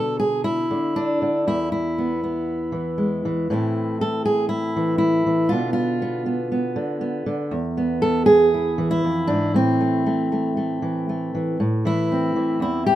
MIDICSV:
0, 0, Header, 1, 2, 480
1, 0, Start_track
1, 0, Key_signature, 0, "minor"
1, 0, Tempo, 505051
1, 1383, Time_signature, 4, 2, 24, 8
1, 8104, Tempo, 509771
1, 12272, End_track
2, 0, Start_track
2, 0, Title_t, "Steel-string acoustic guitar"
2, 0, Program_c, 0, 25
2, 0, Note_on_c, 0, 47, 68
2, 0, Note_on_c, 0, 50, 58
2, 0, Note_on_c, 0, 69, 100
2, 182, Note_off_c, 0, 69, 0
2, 186, Note_on_c, 0, 68, 92
2, 417, Note_off_c, 0, 68, 0
2, 421, Note_on_c, 0, 64, 91
2, 660, Note_off_c, 0, 50, 0
2, 665, Note_off_c, 0, 47, 0
2, 671, Note_on_c, 0, 50, 60
2, 912, Note_on_c, 0, 62, 91
2, 1147, Note_off_c, 0, 50, 0
2, 1159, Note_on_c, 0, 50, 56
2, 1382, Note_off_c, 0, 64, 0
2, 1388, Note_off_c, 0, 62, 0
2, 1391, Note_off_c, 0, 50, 0
2, 1398, Note_on_c, 0, 40, 71
2, 1403, Note_on_c, 0, 64, 84
2, 1622, Note_off_c, 0, 64, 0
2, 1634, Note_on_c, 0, 64, 78
2, 1885, Note_on_c, 0, 59, 43
2, 2113, Note_off_c, 0, 59, 0
2, 2124, Note_on_c, 0, 59, 43
2, 2587, Note_on_c, 0, 52, 57
2, 2830, Note_on_c, 0, 56, 41
2, 3078, Note_off_c, 0, 52, 0
2, 3084, Note_off_c, 0, 64, 0
2, 3090, Note_on_c, 0, 52, 59
2, 3291, Note_off_c, 0, 56, 0
2, 3299, Note_off_c, 0, 52, 0
2, 3327, Note_on_c, 0, 45, 72
2, 3331, Note_off_c, 0, 40, 0
2, 3332, Note_off_c, 0, 59, 0
2, 3335, Note_on_c, 0, 52, 51
2, 3339, Note_on_c, 0, 57, 46
2, 3352, Note_on_c, 0, 60, 47
2, 3359, Note_on_c, 0, 64, 46
2, 3810, Note_off_c, 0, 64, 0
2, 3814, Note_on_c, 0, 69, 92
2, 4040, Note_off_c, 0, 69, 0
2, 4044, Note_on_c, 0, 68, 94
2, 4262, Note_off_c, 0, 68, 0
2, 4266, Note_on_c, 0, 64, 84
2, 4516, Note_off_c, 0, 52, 0
2, 4528, Note_on_c, 0, 52, 63
2, 4724, Note_off_c, 0, 64, 0
2, 4735, Note_on_c, 0, 64, 88
2, 4992, Note_off_c, 0, 52, 0
2, 5003, Note_on_c, 0, 52, 58
2, 5214, Note_off_c, 0, 52, 0
2, 5214, Note_off_c, 0, 60, 0
2, 5218, Note_on_c, 0, 65, 90
2, 5223, Note_off_c, 0, 57, 0
2, 5228, Note_off_c, 0, 64, 0
2, 5238, Note_off_c, 0, 45, 0
2, 5242, Note_on_c, 0, 47, 67
2, 5246, Note_on_c, 0, 50, 45
2, 5254, Note_on_c, 0, 59, 47
2, 5434, Note_off_c, 0, 65, 0
2, 5445, Note_on_c, 0, 65, 84
2, 5716, Note_off_c, 0, 59, 0
2, 5720, Note_on_c, 0, 59, 46
2, 5945, Note_off_c, 0, 59, 0
2, 5949, Note_on_c, 0, 59, 41
2, 6190, Note_off_c, 0, 59, 0
2, 6194, Note_on_c, 0, 59, 45
2, 6412, Note_off_c, 0, 50, 0
2, 6423, Note_on_c, 0, 50, 63
2, 6432, Note_off_c, 0, 47, 0
2, 6650, Note_off_c, 0, 59, 0
2, 6661, Note_on_c, 0, 59, 41
2, 6891, Note_off_c, 0, 65, 0
2, 6892, Note_off_c, 0, 50, 0
2, 6903, Note_on_c, 0, 50, 65
2, 7114, Note_off_c, 0, 59, 0
2, 7140, Note_on_c, 0, 40, 74
2, 7145, Note_off_c, 0, 50, 0
2, 7388, Note_on_c, 0, 59, 46
2, 7621, Note_on_c, 0, 69, 98
2, 7846, Note_off_c, 0, 69, 0
2, 7849, Note_on_c, 0, 68, 101
2, 8116, Note_on_c, 0, 64, 46
2, 8342, Note_on_c, 0, 52, 65
2, 8455, Note_off_c, 0, 68, 0
2, 8462, Note_off_c, 0, 64, 0
2, 8462, Note_on_c, 0, 64, 95
2, 8578, Note_off_c, 0, 40, 0
2, 8591, Note_on_c, 0, 41, 57
2, 8808, Note_on_c, 0, 62, 88
2, 8819, Note_off_c, 0, 41, 0
2, 8823, Note_on_c, 0, 44, 62
2, 9033, Note_off_c, 0, 59, 0
2, 9054, Note_off_c, 0, 62, 0
2, 9060, Note_off_c, 0, 64, 0
2, 9060, Note_on_c, 0, 45, 71
2, 9062, Note_off_c, 0, 44, 0
2, 9074, Note_on_c, 0, 60, 82
2, 9308, Note_on_c, 0, 57, 48
2, 9540, Note_off_c, 0, 57, 0
2, 9551, Note_on_c, 0, 57, 45
2, 9782, Note_off_c, 0, 57, 0
2, 9793, Note_on_c, 0, 57, 43
2, 10016, Note_off_c, 0, 57, 0
2, 10028, Note_on_c, 0, 57, 46
2, 10262, Note_off_c, 0, 52, 0
2, 10266, Note_on_c, 0, 52, 56
2, 10509, Note_off_c, 0, 57, 0
2, 10519, Note_on_c, 0, 57, 45
2, 10747, Note_off_c, 0, 52, 0
2, 10759, Note_on_c, 0, 52, 57
2, 10965, Note_off_c, 0, 52, 0
2, 10967, Note_off_c, 0, 57, 0
2, 10985, Note_off_c, 0, 45, 0
2, 10996, Note_off_c, 0, 60, 0
2, 10996, Note_on_c, 0, 45, 70
2, 11235, Note_on_c, 0, 52, 61
2, 11248, Note_on_c, 0, 64, 83
2, 11484, Note_on_c, 0, 60, 49
2, 11710, Note_off_c, 0, 52, 0
2, 11713, Note_on_c, 0, 52, 59
2, 11939, Note_on_c, 0, 40, 64
2, 11948, Note_off_c, 0, 64, 0
2, 11951, Note_off_c, 0, 45, 0
2, 11960, Note_on_c, 0, 64, 86
2, 12185, Note_off_c, 0, 64, 0
2, 12189, Note_on_c, 0, 67, 101
2, 12272, Note_off_c, 0, 40, 0
2, 12272, Note_off_c, 0, 52, 0
2, 12272, Note_off_c, 0, 60, 0
2, 12272, Note_off_c, 0, 67, 0
2, 12272, End_track
0, 0, End_of_file